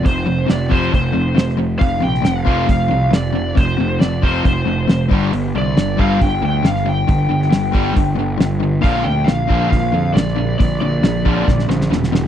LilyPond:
<<
  \new Staff \with { instrumentName = "Lead electric guitar" } { \time 4/4 \key f \mixolydian \tempo 4 = 137 c''4 d''8 c''8 c''4. r8 | f''8 g''8 f''4 f''4 d''4 | c''4 d''8 c''8 c''4. r8 | r8 d''4 f''8 g''8 g''8 f''8 g''8~ |
g''2.~ g''8 r8 | f''8 g''8 f''4 f''4 d''4 | d''8 d''2 r4. | }
  \new Staff \with { instrumentName = "Distorted electric guitar" } { \clef bass \time 4/4 \key f \mixolydian <f, c>8 <f, c>8 <f, c>8 <f, c f>8 <f, c>8 <f, c>8 <f, c>8 <f, c>8 | <f, c>8 <f, c>8 <f, c>8 <f, c f>8 <f, c>8 <f, c>8 <f, c>8 <f, c>8 | <f, c>8 <f, c>8 <f, c>8 <f, c f>8 <f, c>8 <f, c>8 <f, c>8 <g, d g>8 | <g, d>8 <g, d>8 <g, d>8 <g, d g>8 <g, d>8 <g, d>8 <g, d>8 <g, d>8 |
<g, d>8 <g, d>8 <g, d>8 <g, d g>8 <g, d>8 <g, d>8 <g, d>8 <g, d>8 | <bes, d f>8 <bes, d>8 <bes, d>8 <bes, d f>8 <bes, d>8 <bes, d>8 <bes, d>8 <bes, d>8 | <bes, d>8 <bes, d>8 <bes, d>8 <bes, d f>8 <bes, d>8 <bes, d>8 <bes, d>8 <bes, d>8 | }
  \new Staff \with { instrumentName = "Overdriven electric guitar" } { \clef bass \time 4/4 \key f \mixolydian <f, c>8 <f, c>8 <f, c>8 <f, c f>8 <f, c>8 <f, c>8 <f, c>8 <f, c>8 | <f, c>8 <f, c>8 <f, c>8 <f, c f>8 <f, c>8 <f, c>8 <f, c>8 <f, c>8 | <f, c>8 <f, c>8 <f, c>8 <f, c f>8 <f, c>8 <f, c>8 <f, c>8 <g, d g>8 | <g, d>8 <g, d>8 <g, d>8 <g, d g>8 <g, d>8 <g, d>8 <g, d>8 <g, d>8 |
<g, d>8 <g, d>8 <g, d>8 <g, d g>8 <g, d>8 <g, d>8 <g, d>8 <g, d>8 | <bes, d f>8 <bes, d>8 <bes, d>8 <bes, d f>8 <bes, d>8 <bes, d>8 <bes, d>8 <bes, d>8 | <bes, d>8 <bes, d>8 <bes, d>8 <bes, d f>8 <bes, d>8 <bes, d>8 <bes, d>8 <bes, d>8 | }
  \new Staff \with { instrumentName = "Picked electric bass" } { \clef bass \time 4/4 \key f \mixolydian f,,8 f,,8 f,,4 f,,8 f,,8 f,,4 | f,,8 bes,,8 f,,8 f,,8 f,,8 c,8 f,,4 | f,,8 f,,8 f,,4 f,,8 f,,8 f,,8 g,,8 | g,,8 c,8 g,,8 g,,8 g,,8 d,8 g,,4 |
g,,8 g,,8 g,,4 g,,8 g,,8 g,,4 | bes,,8 d,8 bes,,8 bes,,8 bes,,8 f,8 bes,,4 | bes,,8 bes,,8 bes,,4 bes,,8 bes,,8 e,,4 | }
  \new DrumStaff \with { instrumentName = "Drums" } \drummode { \time 4/4 <hho bd>4 <hho sn>8 bd8 <hho bd>4 <hho sn>16 sn8. | <hho bd>8. sn16 <hho sn>8 bd8 <hho bd>4 <hho sn>4 | <hho bd>4 <hho sn>8 bd8 <hho bd>4 <hho sn>8 bd8 | hho4 <hho sn>8 bd8 <hho bd>4 <hho sn>16 sn8. |
<hho bd>8. sn16 <hho sn>8 bd8 <hho bd>4 <hho sn>4 | <hho bd>4 <hho sn>8 bd8 <hho bd>4 <hho sn>16 sn8. | <hho bd>4 <hho sn>8 bd8 <bd sn>16 sn16 sn16 sn16 sn16 sn16 sn8 | }
>>